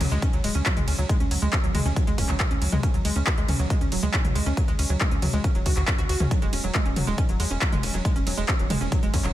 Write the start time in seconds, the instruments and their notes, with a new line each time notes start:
0.01 analog synth bass D2, synth pluck F#3, open hi-hat, mid tom, ride
0.11 analog synth bass D2, synth pluck G#3, closed hi-hat
0.22 synth pluck C#4, kick, closed hi-hat
0.33 analog synth bass D2, synth pluck F#3, closed hi-hat
0.44 analog synth bass D1, synth pluck G#3, open hi-hat, ride
0.55 analog synth bass D2, synth pluck C#4, closed hi-hat
0.66 synth pluck F#3, kick, clap, closed hi-hat
0.77 analog synth bass D2, synth pluck G#3, closed hi-hat, mid tom
0.88 analog synth bass D2, synth pluck C#4, open hi-hat, ride
0.98 analog synth bass D2, synth pluck F#3, closed hi-hat
1.09 synth pluck G#3, kick, closed hi-hat
1.20 analog synth bass D2, synth pluck C#4, closed hi-hat
1.31 analog synth bass D2, synth pluck F#3, open hi-hat, ride
1.42 analog synth bass D2, synth pluck G#3
1.53 synth pluck C#4, kick, clap, closed hi-hat
1.64 analog synth bass D2, synth pluck F#3, closed hi-hat
1.75 analog synth bass D2, synth pluck G#3, open hi-hat, mid tom, ride
1.85 analog synth bass D2, synth pluck C#4, closed hi-hat
1.96 synth pluck F#3, kick, closed hi-hat
2.07 analog synth bass D2, synth pluck G#3, closed hi-hat
2.18 analog synth bass D1, synth pluck C#4, kick, open hi-hat, ride
2.29 analog synth bass D2, synth pluck F#3, clap, closed hi-hat
2.40 synth pluck G#3, kick, clap, closed hi-hat
2.51 analog synth bass D2, synth pluck C#4, closed hi-hat
2.62 analog synth bass D2, synth pluck F#3, open hi-hat, ride
2.72 analog synth bass D2, synth pluck G#3, closed hi-hat, mid tom
2.83 synth pluck C#4, kick, closed hi-hat
2.94 analog synth bass D2, synth pluck F#3, closed hi-hat
3.05 analog synth bass D2, synth pluck G#3, open hi-hat, ride
3.16 analog synth bass D2, synth pluck C#4, closed hi-hat
3.27 synth pluck F#3, kick, clap, closed hi-hat
3.38 analog synth bass D2, synth pluck G#3, closed hi-hat
3.48 analog synth bass D2, synth pluck C#4, open hi-hat, mid tom, ride
3.59 analog synth bass D2, synth pluck F#3, closed hi-hat
3.70 synth pluck G#3, kick, closed hi-hat
3.81 analog synth bass D2, synth pluck C#4, closed hi-hat
3.92 analog synth bass D1, synth pluck F#3, open hi-hat, ride
4.03 analog synth bass D2, synth pluck G#3, closed hi-hat
4.14 synth pluck C#4, kick, clap, closed hi-hat
4.24 analog synth bass D2, synth pluck F#3, closed hi-hat, mid tom
4.35 analog synth bass D2, synth pluck G#3, open hi-hat, ride
4.46 analog synth bass D2, synth pluck C#4, closed hi-hat
4.57 synth pluck F#3, kick, closed hi-hat
4.68 analog synth bass D2, synth pluck G#3, closed hi-hat
4.79 analog synth bass D2, synth pluck C#4, open hi-hat, ride
4.90 analog synth bass D2, synth pluck F#3, closed hi-hat
5.01 synth pluck G#3, kick, clap, closed hi-hat
5.11 analog synth bass D2, synth pluck C#4, closed hi-hat
5.22 analog synth bass D2, synth pluck F#3, open hi-hat, mid tom, ride
5.33 analog synth bass D2, synth pluck G#3, closed hi-hat
5.44 synth pluck C#4, kick, closed hi-hat
5.55 analog synth bass D1, synth pluck F#3, closed hi-hat
5.66 analog synth bass D2, synth pluck F#4, kick, open hi-hat, ride
5.77 analog synth bass D2, synth pluck F#4, clap
5.88 synth pluck F#2, kick, clap, closed hi-hat
5.98 analog synth bass D2, synth pluck F#4, closed hi-hat
6.09 analog synth bass D2, synth pluck F#4, open hi-hat, ride
6.20 analog synth bass D2, synth pluck C#4, mid tom
6.31 synth pluck F#3, kick, closed hi-hat
6.42 analog synth bass E1, synth pluck G#3, closed hi-hat
6.53 analog synth bass E1, synth pluck C#4, open hi-hat, ride
6.64 analog synth bass E1, synth pluck F#3, closed hi-hat
6.75 synth pluck G#3, kick, clap, closed hi-hat
6.85 analog synth bass E1, synth pluck C#4, closed hi-hat
6.96 analog synth bass E1, synth pluck F#3, open hi-hat, mid tom, ride
7.07 analog synth bass E1, synth pluck G#3, closed hi-hat
7.18 synth pluck C#4, kick, closed hi-hat
7.29 analog synth bass E1, synth pluck F#3, closed hi-hat
7.40 analog synth bass E2, synth pluck G#3, open hi-hat, ride
7.50 analog synth bass E1, synth pluck C#4, closed hi-hat
7.62 synth pluck F#3, kick, clap, closed hi-hat
7.72 analog synth bass E1, synth pluck G#3, closed hi-hat, mid tom
7.83 analog synth bass E1, synth pluck C#4, open hi-hat, ride
7.94 analog synth bass E1, synth pluck F#3, closed hi-hat
8.05 synth pluck G#3, kick, closed hi-hat
8.16 analog synth bass E1, synth pluck C#4, closed hi-hat
8.27 analog synth bass E1, synth pluck F#3, open hi-hat, ride
8.38 analog synth bass E1, synth pluck G#3, closed hi-hat
8.48 synth pluck C#4, kick, clap, closed hi-hat
8.59 analog synth bass E1, synth pluck F#3, closed hi-hat
8.70 analog synth bass E1, synth pluck G#3, open hi-hat, mid tom, ride
8.81 analog synth bass E1, synth pluck C#4, closed hi-hat
8.92 synth pluck F#3, kick, closed hi-hat
9.03 analog synth bass E1, synth pluck G#3, closed hi-hat
9.14 analog synth bass E2, synth pluck C#4, kick, open hi-hat, ride
9.24 analog synth bass E1, synth pluck F#3, clap